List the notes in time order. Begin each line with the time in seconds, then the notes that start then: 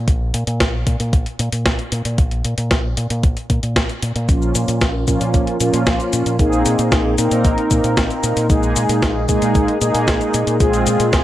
0.08 A#1, kick, closed hi-hat
0.34 A#2, closed hi-hat
0.47 A#2, closed hi-hat
0.60 A#1, kick, snare, closed hi-hat
0.87 A#2, kick, closed hi-hat
1.00 A#2, closed hi-hat
1.13 A#1, kick, closed hi-hat
1.26 closed hi-hat
1.39 A#2, closed hi-hat
1.52 A#2, closed hi-hat
1.66 A#1, kick, snare, closed hi-hat
1.79 closed hi-hat
1.92 A#2, closed hi-hat
2.05 A#2, closed hi-hat
2.18 A#1, kick, closed hi-hat
2.31 closed hi-hat
2.45 A#2, closed hi-hat
2.58 A#2, closed hi-hat
2.71 A#1, kick, snare, closed hi-hat
2.97 A#2, closed hi-hat
3.10 A#2, closed hi-hat
3.23 A#1, kick, closed hi-hat
3.37 closed hi-hat
3.50 A#2, kick, closed hi-hat
3.63 A#2, closed hi-hat
3.76 A#1, kick, snare, closed hi-hat
3.89 closed hi-hat
4.02 A#2, closed hi-hat
4.16 A#2, closed hi-hat
4.29 A#1 F3 A#3 C#4 F4, kick, closed hi-hat, cabasa
4.42 cabasa
4.55 A#2, closed hi-hat, cabasa
4.68 A#2, closed hi-hat, cabasa
4.81 A#1, kick, snare, closed hi-hat, cabasa
5.08 A#2 F3 A#3 C#4 F4, kick, closed hi-hat, cabasa
5.21 A#2, closed hi-hat, cabasa
5.34 A#1, kick, closed hi-hat, cabasa
5.47 closed hi-hat
5.60 A#2 F3 A#3 C#4 F4, closed hi-hat, cabasa
5.74 A#2, closed hi-hat, cabasa
5.87 A#1, kick, snare, closed hi-hat, cabasa
6.00 closed hi-hat, cabasa
6.13 A#2, closed hi-hat, cabasa
6.26 A#2, closed hi-hat, cabasa
6.39 A#1 A#3 C4 D#4 G#4, kick, closed hi-hat, cabasa
6.53 cabasa
6.66 A#2, closed hi-hat, cabasa
6.79 A#2, closed hi-hat, cabasa
6.92 A#1, kick, snare, closed hi-hat, cabasa
7.18 A#2 A#3 C4 D#4 A#4, closed hi-hat, cabasa
7.31 A#2, closed hi-hat, cabasa
7.45 A#1, kick, closed hi-hat, cabasa
7.58 closed hi-hat
7.71 A#2, kick, closed hi-hat, cabasa
7.84 A#2, closed hi-hat, cabasa
7.97 A#1, kick, snare, closed hi-hat, cabasa
8.10 closed hi-hat, cabasa
8.23 A#2, closed hi-hat, cabasa
8.37 A#2, closed hi-hat, cabasa
8.50 A#1 G#3 A#3 D#4 G#4, kick, closed hi-hat, cabasa
8.63 cabasa
8.76 A#2, closed hi-hat, cabasa
8.89 A#2, closed hi-hat, cabasa
9.02 A#1, kick, snare, closed hi-hat, cabasa
9.29 A#2 G#3 A#3 D#4 G#4, kick, closed hi-hat, cabasa
9.42 A#2, closed hi-hat, cabasa
9.55 A#1, kick, closed hi-hat, cabasa
9.68 closed hi-hat
9.81 A#2 G#3 A#3 D#4 G#4, closed hi-hat, cabasa
9.95 A#2, closed hi-hat, cabasa
10.08 A#1, kick, snare, closed hi-hat, cabasa
10.21 closed hi-hat, cabasa
10.34 A#2, closed hi-hat, cabasa
10.47 A#2, closed hi-hat, cabasa
10.60 A#1 G#3 C4 F4 G#4, kick, closed hi-hat, cabasa
10.73 closed hi-hat, cabasa
10.87 A#2, closed hi-hat, cabasa
11.00 A#2, closed hi-hat, cabasa
11.13 A#1, kick, snare, closed hi-hat, cabasa